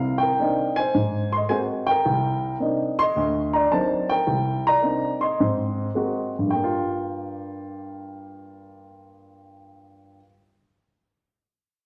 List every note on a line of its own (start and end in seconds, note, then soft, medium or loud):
0.00 0.31 C2 medium
0.00 0.31 C3 medium
0.00 0.17 A#4 medium
0.00 0.15 F5 medium
0.18 0.76 G5 medium
0.23 0.73 A#4 medium
0.39 0.78 A#3 soft
0.39 0.78 C4 soft
0.39 0.78 D4 soft
0.39 0.78 D#4 medium
0.76 1.29 C5 medium
0.76 1.33 G#5 medium
0.94 1.42 G#2 medium
1.32 1.37 C6 medium
1.36 1.41 D#5 medium
1.49 1.89 G#3 soft
1.49 1.89 A#3 soft
1.49 1.89 C4 soft
1.49 1.89 F#4 medium
1.49 1.60 C5 medium
1.49 1.58 G#5 medium
1.87 2.56 G5 loud
1.91 2.58 A#4 medium
2.05 2.54 C2 medium
2.60 3.00 A#3 soft
2.60 3.00 C4 soft
2.60 3.00 D4 soft
2.60 3.00 D#4 medium
2.99 3.51 D#5 medium
2.99 3.55 C6 loud
3.16 3.64 D2 medium
3.53 3.72 D5 medium
3.53 3.71 A#5 medium
3.71 4.11 F#3 soft
3.71 4.11 A#3 soft
3.71 4.11 C4 soft
3.71 4.11 D4 soft
3.71 4.12 D#4 medium
3.71 4.07 C5 medium
3.71 4.10 A5 medium
4.09 4.63 A#4 medium
4.09 4.67 G5 medium
4.27 4.76 C2 medium
4.67 5.19 D5 medium
4.67 5.18 A#5 medium
4.82 5.22 A#3 soft
4.82 5.22 C4 soft
4.82 5.22 D4 soft
4.82 5.23 D#4 medium
5.21 6.29 D#5 medium
5.21 6.28 C6 medium
5.40 5.88 G#2 medium
5.40 5.88 C4 medium
5.95 6.35 G#3 soft
5.95 6.35 A#3 soft
5.95 6.35 C4 soft
5.95 6.35 F#4 medium
6.39 10.17 G2 medium
6.47 10.21 G3 soft
6.47 10.19 G5 medium
6.55 10.25 A#3 soft
6.64 10.29 F4 medium